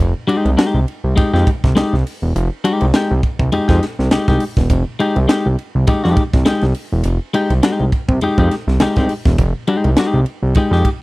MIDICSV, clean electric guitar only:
0, 0, Header, 1, 2, 480
1, 0, Start_track
1, 0, Key_signature, -4, "minor"
1, 0, Tempo, 587659
1, 1911, Time_signature, 4, 2, 24, 8
1, 9003, End_track
2, 0, Start_track
2, 0, Title_t, "Clean electric guitar"
2, 0, Program_c, 0, 27
2, 224, Note_on_c, 0, 56, 96
2, 232, Note_on_c, 0, 63, 109
2, 239, Note_on_c, 0, 67, 95
2, 400, Note_off_c, 0, 56, 0
2, 404, Note_off_c, 0, 63, 0
2, 407, Note_off_c, 0, 67, 0
2, 467, Note_on_c, 0, 56, 82
2, 469, Note_on_c, 0, 63, 87
2, 477, Note_on_c, 0, 67, 90
2, 641, Note_off_c, 0, 56, 0
2, 642, Note_off_c, 0, 63, 0
2, 646, Note_off_c, 0, 67, 0
2, 947, Note_on_c, 0, 56, 63
2, 955, Note_on_c, 0, 63, 69
2, 959, Note_on_c, 0, 67, 72
2, 1071, Note_off_c, 0, 56, 0
2, 1075, Note_off_c, 0, 63, 0
2, 1077, Note_off_c, 0, 67, 0
2, 1090, Note_on_c, 0, 63, 69
2, 1090, Note_on_c, 0, 67, 86
2, 1098, Note_on_c, 0, 56, 64
2, 1215, Note_off_c, 0, 63, 0
2, 1215, Note_off_c, 0, 67, 0
2, 1219, Note_off_c, 0, 56, 0
2, 1433, Note_on_c, 0, 56, 84
2, 1442, Note_on_c, 0, 63, 99
2, 1447, Note_on_c, 0, 67, 93
2, 1583, Note_off_c, 0, 56, 0
2, 1588, Note_off_c, 0, 63, 0
2, 1590, Note_off_c, 0, 67, 0
2, 2159, Note_on_c, 0, 56, 83
2, 2159, Note_on_c, 0, 63, 100
2, 2163, Note_on_c, 0, 67, 100
2, 2328, Note_off_c, 0, 56, 0
2, 2328, Note_off_c, 0, 63, 0
2, 2330, Note_off_c, 0, 67, 0
2, 2402, Note_on_c, 0, 56, 84
2, 2410, Note_on_c, 0, 63, 73
2, 2417, Note_on_c, 0, 67, 91
2, 2548, Note_off_c, 0, 56, 0
2, 2552, Note_off_c, 0, 63, 0
2, 2555, Note_off_c, 0, 67, 0
2, 2878, Note_on_c, 0, 56, 61
2, 2883, Note_on_c, 0, 63, 67
2, 2889, Note_on_c, 0, 67, 68
2, 2995, Note_off_c, 0, 67, 0
2, 2996, Note_off_c, 0, 56, 0
2, 2999, Note_off_c, 0, 63, 0
2, 3005, Note_on_c, 0, 67, 82
2, 3012, Note_on_c, 0, 63, 76
2, 3014, Note_on_c, 0, 56, 69
2, 3132, Note_off_c, 0, 67, 0
2, 3136, Note_off_c, 0, 63, 0
2, 3137, Note_off_c, 0, 56, 0
2, 3361, Note_on_c, 0, 56, 65
2, 3366, Note_on_c, 0, 63, 75
2, 3370, Note_on_c, 0, 67, 85
2, 3478, Note_off_c, 0, 56, 0
2, 3480, Note_off_c, 0, 63, 0
2, 3483, Note_off_c, 0, 67, 0
2, 3497, Note_on_c, 0, 67, 84
2, 3500, Note_on_c, 0, 63, 81
2, 3511, Note_on_c, 0, 56, 72
2, 3618, Note_off_c, 0, 67, 0
2, 3620, Note_off_c, 0, 63, 0
2, 3625, Note_off_c, 0, 56, 0
2, 4080, Note_on_c, 0, 56, 90
2, 4087, Note_on_c, 0, 63, 88
2, 4092, Note_on_c, 0, 67, 97
2, 4227, Note_off_c, 0, 56, 0
2, 4230, Note_off_c, 0, 63, 0
2, 4233, Note_off_c, 0, 67, 0
2, 4311, Note_on_c, 0, 56, 78
2, 4318, Note_on_c, 0, 63, 83
2, 4324, Note_on_c, 0, 67, 95
2, 4462, Note_off_c, 0, 56, 0
2, 4465, Note_off_c, 0, 63, 0
2, 4469, Note_off_c, 0, 67, 0
2, 4798, Note_on_c, 0, 56, 68
2, 4803, Note_on_c, 0, 63, 65
2, 4810, Note_on_c, 0, 67, 77
2, 4916, Note_off_c, 0, 56, 0
2, 4919, Note_off_c, 0, 63, 0
2, 4922, Note_off_c, 0, 67, 0
2, 4931, Note_on_c, 0, 67, 82
2, 4939, Note_on_c, 0, 56, 63
2, 4939, Note_on_c, 0, 63, 78
2, 5082, Note_off_c, 0, 67, 0
2, 5086, Note_off_c, 0, 56, 0
2, 5086, Note_off_c, 0, 63, 0
2, 5271, Note_on_c, 0, 56, 88
2, 5283, Note_on_c, 0, 63, 96
2, 5286, Note_on_c, 0, 67, 103
2, 5422, Note_off_c, 0, 56, 0
2, 5428, Note_off_c, 0, 63, 0
2, 5429, Note_off_c, 0, 67, 0
2, 5993, Note_on_c, 0, 56, 83
2, 5999, Note_on_c, 0, 63, 86
2, 6005, Note_on_c, 0, 67, 102
2, 6142, Note_off_c, 0, 56, 0
2, 6146, Note_off_c, 0, 63, 0
2, 6149, Note_off_c, 0, 67, 0
2, 6231, Note_on_c, 0, 56, 83
2, 6236, Note_on_c, 0, 63, 78
2, 6242, Note_on_c, 0, 67, 85
2, 6402, Note_off_c, 0, 56, 0
2, 6405, Note_off_c, 0, 63, 0
2, 6408, Note_off_c, 0, 67, 0
2, 6717, Note_on_c, 0, 56, 59
2, 6724, Note_on_c, 0, 63, 71
2, 6729, Note_on_c, 0, 67, 72
2, 6835, Note_off_c, 0, 56, 0
2, 6838, Note_off_c, 0, 63, 0
2, 6840, Note_off_c, 0, 67, 0
2, 6853, Note_on_c, 0, 67, 81
2, 6855, Note_on_c, 0, 63, 72
2, 6862, Note_on_c, 0, 56, 65
2, 6975, Note_off_c, 0, 67, 0
2, 6976, Note_off_c, 0, 63, 0
2, 6979, Note_off_c, 0, 56, 0
2, 7198, Note_on_c, 0, 56, 80
2, 7204, Note_on_c, 0, 63, 80
2, 7206, Note_on_c, 0, 67, 78
2, 7315, Note_off_c, 0, 56, 0
2, 7316, Note_off_c, 0, 67, 0
2, 7318, Note_off_c, 0, 63, 0
2, 7326, Note_on_c, 0, 67, 83
2, 7332, Note_on_c, 0, 63, 67
2, 7338, Note_on_c, 0, 56, 71
2, 7451, Note_off_c, 0, 67, 0
2, 7454, Note_off_c, 0, 63, 0
2, 7457, Note_off_c, 0, 56, 0
2, 7904, Note_on_c, 0, 56, 97
2, 7908, Note_on_c, 0, 63, 98
2, 7914, Note_on_c, 0, 67, 97
2, 8078, Note_off_c, 0, 56, 0
2, 8080, Note_off_c, 0, 63, 0
2, 8083, Note_off_c, 0, 67, 0
2, 8151, Note_on_c, 0, 56, 78
2, 8155, Note_on_c, 0, 63, 99
2, 8163, Note_on_c, 0, 67, 104
2, 8321, Note_off_c, 0, 56, 0
2, 8323, Note_off_c, 0, 63, 0
2, 8327, Note_off_c, 0, 67, 0
2, 8633, Note_on_c, 0, 56, 74
2, 8633, Note_on_c, 0, 63, 69
2, 8641, Note_on_c, 0, 67, 68
2, 8751, Note_off_c, 0, 56, 0
2, 8751, Note_off_c, 0, 63, 0
2, 8753, Note_off_c, 0, 67, 0
2, 8763, Note_on_c, 0, 63, 72
2, 8763, Note_on_c, 0, 67, 98
2, 8766, Note_on_c, 0, 56, 64
2, 8888, Note_off_c, 0, 67, 0
2, 8889, Note_off_c, 0, 63, 0
2, 8890, Note_off_c, 0, 56, 0
2, 9003, End_track
0, 0, End_of_file